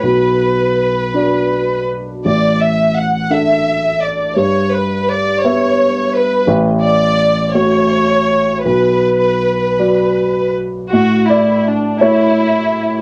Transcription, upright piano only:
\new Staff \with { instrumentName = "Upright piano" } { \time 6/8 \key b \minor \tempo 4. = 55 << { r2. | r2. | r2. | r2. |
r2. | r8 d''4 cis''4. | } \\ { b,,4. <d' fis' d''>4. | a,,4. <d' a' e''>4. | g,4. <b b' e''>4. | a,,4. <a fis' cis''>4. |
b,,4. <fis fis' d''>4. | a,4. <a e' e''>4. | } >> }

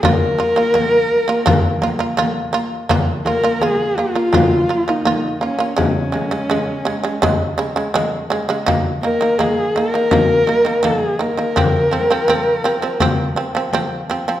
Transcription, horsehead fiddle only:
\new Staff \with { instrumentName = "Horsehead fiddle" } { \time 4/4 \key bes \minor \tempo 4 = 83 bes'2. r4 | r8 bes'8 aes'8 f'4~ f'16 ees'8. des'8 | des'2. r4 | r8 bes'8 aes'8 bes'4. aes'8 bes'8~ |
bes'2. r4 | }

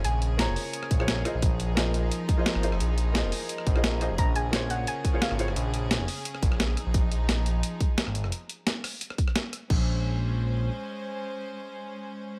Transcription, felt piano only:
\new Staff \with { instrumentName = "Felt piano" } { \time 4/4 \key bes \minor \tempo 4 = 174 r4 <bes f' aes' c'' des''>4.~ <bes f' aes' c'' des''>16 <bes f' aes' c'' des''>8. <bes f' aes' c'' ees''>16 r16 | r4 <bes f' aes' c'' ees''>4.~ <bes f' aes' c'' ees''>16 <bes f' aes' c'' ees''>8. <bes f' aes' c'' ees''>16 r16 | r4 <bes f' aes' c'' ees''>4.~ <bes f' aes' c'' ees''>16 <bes f' aes' c'' ees''>8. <bes f' aes' c'' ees''>16 r16 | r4 <bes f' aes' c'' des''>4.~ <bes f' aes' c'' des''>16 <bes f' aes' c'' des''>8. <bes f' aes' c'' des''>16 r16 |
r1 | r1 | r1 | r1 |
r1 | }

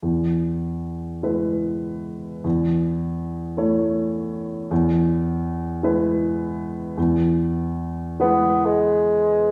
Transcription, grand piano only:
\new Staff \with { instrumentName = "Grand piano" } { \time 6/8 \key e \major \tempo 4. = 51 e,4. <gis e' b'>4. | e,4. <a e' cis''>4. | e,4. <gis e' b'>4. | e,4. <gis e' b'>4. | }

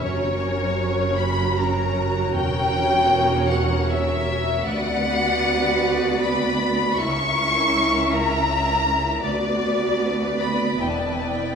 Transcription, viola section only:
\new Staff \with { instrumentName = "Viola section" } { \time 3/4 \key b \minor \tempo 4 = 78 << { fis'2.~ | fis'2. | fis'2. | e'2. |
fis'2 e'4 | } \\ { cis'2. | cis'2. | b2. | cis'2. |
b2. | } >> }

